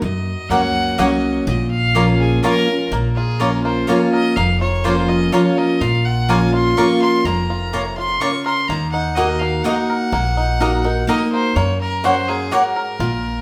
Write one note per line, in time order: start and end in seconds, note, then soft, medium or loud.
0.01 0.94 F#2 loud
0.01 0.33 F#2 medium
0.01 0.51 D#5 medium
0.49 0.91 C#2 medium
0.49 0.97 F#3 medium
0.49 0.60 A#3 medium
0.49 0.61 A#3 medium
0.49 0.97 A#3 medium
0.49 0.97 C#4 medium
0.49 0.60 F#4 loud
0.49 0.53 F#4 medium
0.49 0.98 F#4 medium
0.49 0.60 C#5 loud
0.49 1.00 F#5 loud
0.49 0.60 F#5 loud
0.98 1.40 C2 medium
0.98 1.45 F#3 loud
0.98 1.08 A#3 loud
0.98 1.45 A#3 medium
0.98 1.10 A#3 medium
0.98 1.45 C#4 loud
0.98 1.08 F#4 loud
0.98 1.45 F#4 loud
0.98 1.02 F#4 medium
0.98 1.08 C#5 loud
0.98 1.46 D#5 loud
0.98 1.08 F#5 loud
1.47 2.39 A#1 loud
1.47 2.39 A#2 loud
1.47 1.70 D#5 medium
1.71 2.16 F5 loud
1.95 2.41 F3 medium
1.95 2.04 A#3 medium
1.95 2.41 A#3 loud
1.95 2.07 A#3 medium
1.95 2.42 C#4 loud
1.95 2.05 F4 medium
1.95 2.42 F4 medium
1.95 1.99 F4 medium
1.95 2.05 C#5 loud
1.95 2.05 A#5 loud
2.20 2.42 G#4 medium
2.43 2.67 F3 medium
2.43 2.52 A#3 medium
2.43 2.67 A#3 loud
2.43 2.55 A#3 medium
2.43 2.68 C#4 loud
2.43 2.53 F4 loud
2.43 2.67 F4 loud
2.43 2.47 F4 medium
2.43 2.89 A#4 loud
2.43 2.53 C#5 loud
2.43 2.53 A#5 loud
2.68 2.92 C#4 soft
2.68 2.91 F4 medium
2.91 3.83 A#1 medium
2.91 3.84 A#2 loud
2.91 3.65 A#3 medium
3.15 3.41 F4 medium
3.15 3.41 G#4 loud
3.40 3.86 F3 medium
3.40 3.49 A#3 medium
3.40 3.86 A#3 medium
3.40 3.86 C#4 loud
3.40 3.49 F4 medium
3.40 3.89 F4 medium
3.40 3.87 F4 loud
3.40 3.63 A#4 medium
3.40 3.50 C#5 medium
3.40 3.50 A#5 loud
3.64 4.37 A#3 medium
3.64 3.89 C5 medium
3.87 4.34 F3 medium
3.87 3.97 A#3 loud
3.87 4.34 A#3 loud
3.87 4.35 C#4 loud
3.87 3.97 F4 medium
3.87 4.61 F4 medium
3.87 4.35 F4 loud
3.87 4.11 C#5 medium
3.87 3.98 C#5 medium
3.87 3.98 A#5 loud
4.12 4.85 A#4 medium
4.12 4.37 D#5 loud
4.36 5.28 F1 medium
4.36 5.28 F2 loud
4.36 5.57 A#3 medium
4.36 4.59 F5 loud
4.60 5.09 F4 medium
4.60 4.86 C#5 loud
4.84 5.31 F3 medium
4.84 4.94 A#3 loud
4.84 5.31 A#3 medium
4.84 5.31 C#4 medium
4.84 4.94 F4 medium
4.84 5.31 F4 medium
4.84 5.33 A#4 medium
4.84 5.10 C5 loud
4.84 4.94 C#5 medium
4.84 4.94 A#5 loud
5.09 5.81 F4 medium
5.09 5.34 D#5 loud
5.32 5.78 F3 medium
5.32 5.42 A#3 loud
5.32 5.79 A#3 medium
5.32 5.79 C#4 loud
5.32 5.42 F4 loud
5.32 5.79 F4 loud
5.32 6.29 A#4 medium
5.32 5.59 C#5 medium
5.32 5.42 C#5 loud
5.32 5.42 A#5 loud
5.58 6.98 A#3 medium
5.58 5.83 D#5 loud
5.81 6.72 A#1 medium
5.81 6.73 A#2 loud
5.81 6.54 F4 medium
5.81 6.06 F5 loud
6.05 6.32 F#5 loud
6.28 6.75 F3 medium
6.28 6.38 A#3 medium
6.28 6.75 A#3 medium
6.28 6.75 C#4 medium
6.28 6.38 F4 loud
6.28 6.75 F4 loud
6.28 6.77 A#4 medium
6.28 6.39 C#5 loud
6.28 6.53 G#5 loud
6.28 6.39 A#5 loud
6.54 7.21 F4 medium
6.54 6.79 C6 loud
6.77 7.23 F3 loud
6.77 6.86 A#3 loud
6.77 7.23 A#3 medium
6.77 7.23 C#4 loud
6.77 6.87 F4 loud
6.77 7.24 F4 loud
6.77 8.18 A#4 medium
6.77 6.87 C#5 loud
6.77 6.87 A#5 loud
6.77 7.01 C#6 loud
7.01 7.26 A#3 medium
7.01 7.27 C6 loud
7.25 8.16 F1 medium
7.25 8.17 F2 loud
7.25 7.74 A#3 medium
7.25 7.96 A#5 loud
7.50 7.97 F4 medium
7.73 8.19 C3 medium
7.73 7.82 A#3 medium
7.73 8.69 A#3 medium
7.73 7.82 F4 medium
7.73 7.83 C#5 loud
7.73 7.83 A#5 loud
7.97 8.20 F4 medium
7.97 8.22 C6 loud
8.21 8.67 C#3 medium
8.21 8.30 A#3 loud
8.21 8.30 F4 loud
8.21 8.69 F4 medium
8.21 8.31 C#5 loud
8.21 8.31 A#5 loud
8.21 8.45 C#6 loud
8.46 9.86 A#4 medium
8.46 8.70 C6 loud
8.68 9.60 D#2 medium
8.68 9.61 D#3 loud
8.68 9.41 A#3 medium
8.68 8.91 A#5 loud
8.92 9.60 D#4 medium
8.92 9.17 F#5 loud
9.15 9.26 A#3 medium
9.15 9.63 A#3 medium
9.15 9.63 D#4 medium
9.15 9.26 F#4 medium
9.15 10.57 F#4 medium
9.15 9.63 F#4 loud
9.15 9.63 A#4 loud
9.15 9.41 D#5 loud
9.15 9.26 D#5 medium
9.15 9.26 A#5 loud
9.39 10.13 A#3 medium
9.39 9.65 F5 loud
9.63 10.10 A#3 medium
9.63 9.74 A#3 medium
9.63 10.11 D#4 loud
9.63 10.33 D#4 medium
9.63 9.74 F#4 loud
9.63 10.11 F#4 loud
9.63 10.11 A#4 loud
9.63 9.74 D#5 loud
9.63 11.08 F#5 loud
9.63 9.75 A#5 loud
9.90 10.60 A#4 medium
10.12 11.03 A#1 medium
10.12 11.04 A#2 loud
10.12 11.33 A#3 medium
10.37 10.84 D#4 medium
10.60 10.84 A#3 medium
10.60 10.70 A#3 medium
10.60 10.84 D#4 medium
10.60 10.84 F#4 medium
10.60 10.70 F#4 medium
10.60 11.09 A#4 medium
10.60 10.83 A#4 loud
10.60 10.70 D#5 loud
10.60 10.70 A#5 loud
10.84 11.52 D#4 medium
10.84 11.07 F#4 medium
10.84 11.07 A#4 medium
11.07 11.54 A#3 medium
11.07 11.18 A#3 loud
11.07 11.54 D#4 loud
11.07 11.54 F#4 loud
11.07 11.18 F#4 medium
11.07 12.49 A#4 medium
11.07 11.54 A#4 loud
11.07 11.31 D#5 medium
11.07 11.18 D#5 loud
11.07 11.18 A#5 loud
11.32 11.56 A#3 medium
11.32 11.57 C5 loud
11.56 12.47 F#2 medium
11.56 12.03 F#2 loud
11.56 12.29 A#3 medium
11.56 11.80 C#5 loud
11.81 12.06 A#4 loud
12.04 12.50 F#2 medium
12.04 12.13 A#3 medium
12.04 12.51 F#4 medium
12.04 12.14 F#4 loud
12.04 12.30 C5 loud
12.04 12.14 C#5 medium
12.04 12.14 F#5 loud
12.28 13.41 A#3 medium
12.28 12.54 G#4 loud
12.51 12.98 G#2 loud
12.51 12.61 A#3 loud
12.51 13.00 F#4 medium
12.51 12.61 F#4 loud
12.51 13.41 A#4 loud
12.51 12.61 C#5 loud
12.51 12.62 F#5 loud
12.76 13.41 A#4 medium
13.00 13.41 A#1 medium
13.00 13.41 A#2 loud
13.00 13.41 F4 medium